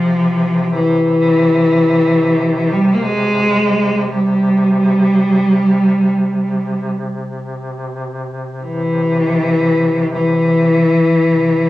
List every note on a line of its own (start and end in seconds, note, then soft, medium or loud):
0.00 11.06 C3 soft
0.00 0.72 F3 medium
0.74 2.73 E3 medium
2.72 2.96 G3 medium
2.95 3.04 A#3 soft
3.03 4.11 G#3 medium
4.09 6.90 G3 medium
8.64 10.09 E3 medium
10.14 11.70 E3 medium
11.23 11.70 C3 soft